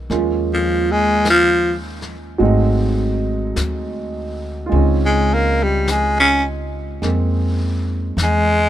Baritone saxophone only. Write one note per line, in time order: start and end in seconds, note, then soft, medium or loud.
0.53 0.93 F3 medium
0.92 1.28 G#3 medium
1.30 1.74 F3 medium
5.06 5.35 G#3 medium
5.34 5.65 A#3 loud
5.63 5.93 G3 medium
5.91 6.19 G#3 medium
6.20 6.44 C#4 medium
8.23 8.69 G#3 medium